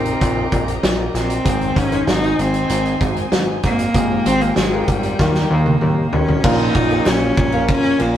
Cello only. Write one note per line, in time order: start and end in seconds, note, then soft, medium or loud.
0.00 0.85 C4 medium
1.17 1.79 C4 medium
1.77 2.08 C#4 loud
2.09 2.42 D#4 medium
2.40 3.33 C4 medium
3.65 4.28 A#3 loud
4.26 4.43 C4 loud
4.41 4.57 A#3 loud
4.57 4.89 G#3 medium
4.88 5.50 G3 medium
5.52 6.16 A#3 medium
6.15 6.48 C#4 medium
6.46 7.10 D#4 medium
7.08 7.69 C#4 medium
7.71 8.03 C#4 loud
8.01 8.17 A#3 medium